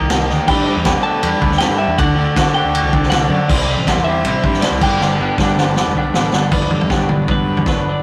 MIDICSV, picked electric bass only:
0, 0, Header, 1, 2, 480
1, 0, Start_track
1, 0, Key_signature, 1, "major"
1, 0, Tempo, 378072
1, 616, Time_signature, 4, 2, 24, 8
1, 10191, End_track
2, 0, Start_track
2, 0, Title_t, "Picked electric bass"
2, 0, Program_c, 0, 34
2, 130, Note_on_c, 0, 36, 91
2, 347, Note_off_c, 0, 36, 0
2, 368, Note_on_c, 0, 38, 96
2, 479, Note_off_c, 0, 38, 0
2, 602, Note_on_c, 0, 43, 119
2, 930, Note_off_c, 0, 43, 0
2, 967, Note_on_c, 0, 40, 104
2, 1186, Note_off_c, 0, 40, 0
2, 1219, Note_on_c, 0, 47, 84
2, 1539, Note_off_c, 0, 47, 0
2, 1565, Note_on_c, 0, 40, 111
2, 1677, Note_off_c, 0, 40, 0
2, 1800, Note_on_c, 0, 38, 113
2, 2021, Note_off_c, 0, 38, 0
2, 2136, Note_on_c, 0, 43, 90
2, 2368, Note_off_c, 0, 43, 0
2, 2377, Note_on_c, 0, 40, 80
2, 2501, Note_off_c, 0, 40, 0
2, 2519, Note_on_c, 0, 38, 112
2, 2728, Note_off_c, 0, 38, 0
2, 2736, Note_on_c, 0, 38, 95
2, 2860, Note_off_c, 0, 38, 0
2, 2997, Note_on_c, 0, 50, 116
2, 3326, Note_off_c, 0, 50, 0
2, 3340, Note_on_c, 0, 38, 81
2, 3569, Note_off_c, 0, 38, 0
2, 3577, Note_on_c, 0, 36, 88
2, 3914, Note_off_c, 0, 36, 0
2, 3939, Note_on_c, 0, 36, 96
2, 4168, Note_off_c, 0, 36, 0
2, 4173, Note_on_c, 0, 42, 114
2, 4297, Note_off_c, 0, 42, 0
2, 4431, Note_on_c, 0, 36, 100
2, 4761, Note_off_c, 0, 36, 0
2, 4790, Note_on_c, 0, 33, 105
2, 5013, Note_off_c, 0, 33, 0
2, 5027, Note_on_c, 0, 40, 83
2, 5358, Note_off_c, 0, 40, 0
2, 5381, Note_on_c, 0, 33, 108
2, 5500, Note_off_c, 0, 33, 0
2, 5625, Note_on_c, 0, 43, 101
2, 5850, Note_off_c, 0, 43, 0
2, 5975, Note_on_c, 0, 36, 91
2, 6097, Note_off_c, 0, 36, 0
2, 6107, Note_on_c, 0, 31, 104
2, 6545, Note_off_c, 0, 31, 0
2, 6597, Note_on_c, 0, 31, 82
2, 6708, Note_off_c, 0, 31, 0
2, 6829, Note_on_c, 0, 43, 106
2, 7159, Note_off_c, 0, 43, 0
2, 7193, Note_on_c, 0, 31, 89
2, 7413, Note_off_c, 0, 31, 0
2, 7429, Note_on_c, 0, 28, 89
2, 7540, Note_off_c, 0, 28, 0
2, 7548, Note_on_c, 0, 35, 88
2, 7772, Note_off_c, 0, 35, 0
2, 7783, Note_on_c, 0, 33, 85
2, 8010, Note_off_c, 0, 33, 0
2, 8022, Note_on_c, 0, 31, 93
2, 8249, Note_off_c, 0, 31, 0
2, 8269, Note_on_c, 0, 31, 93
2, 8385, Note_off_c, 0, 31, 0
2, 8507, Note_on_c, 0, 43, 78
2, 8948, Note_off_c, 0, 43, 0
2, 8990, Note_on_c, 0, 31, 89
2, 9215, Note_off_c, 0, 31, 0
2, 9234, Note_on_c, 0, 43, 93
2, 9673, Note_off_c, 0, 43, 0
2, 9726, Note_on_c, 0, 30, 86
2, 9837, Note_off_c, 0, 30, 0
2, 9869, Note_on_c, 0, 31, 78
2, 10186, Note_off_c, 0, 31, 0
2, 10191, End_track
0, 0, End_of_file